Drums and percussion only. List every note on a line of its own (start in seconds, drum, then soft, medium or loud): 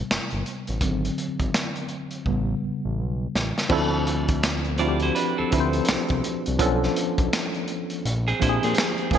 0.11 finger snap medium
0.11 snare medium
0.31 closed hi-hat soft
0.46 closed hi-hat medium
0.67 closed hi-hat soft
0.81 kick medium
0.81 closed hi-hat medium
1.05 closed hi-hat soft
1.18 closed hi-hat medium
1.39 kick medium
1.39 closed hi-hat soft
1.54 finger snap medium
1.54 snare loud
1.76 closed hi-hat soft
1.88 closed hi-hat soft
2.11 closed hi-hat soft
2.26 kick medium
3.35 snare medium
3.58 snare medium
3.69 kick loud
3.69 crash loud
4.07 closed hi-hat medium
4.28 kick medium
4.28 closed hi-hat soft
4.43 finger snap loud
4.43 snare loud
4.43 closed hi-hat medium
4.65 closed hi-hat soft
4.78 closed hi-hat medium
5.00 closed hi-hat soft
5.16 closed hi-hat medium
5.52 kick medium
5.52 closed hi-hat medium
5.73 closed hi-hat medium
5.85 finger snap medium
5.85 snare loud
5.85 closed hi-hat medium
6.09 kick loud
6.09 closed hi-hat soft
6.24 closed hi-hat medium
6.46 closed hi-hat soft
6.59 kick loud
6.59 closed hi-hat medium
6.83 snare soft
6.96 closed hi-hat medium
7.18 kick medium
7.18 closed hi-hat medium
7.33 finger snap loud
7.33 snare loud
7.33 closed hi-hat medium
7.54 closed hi-hat soft
7.68 closed hi-hat medium
7.90 closed hi-hat soft
8.05 closed hi-hat medium
8.28 closed hi-hat soft
8.42 kick medium
8.42 closed hi-hat medium
8.63 closed hi-hat medium
8.75 finger snap medium
8.75 snare loud
8.75 closed hi-hat medium
8.98 closed hi-hat soft
9.11 kick medium
9.11 closed hi-hat medium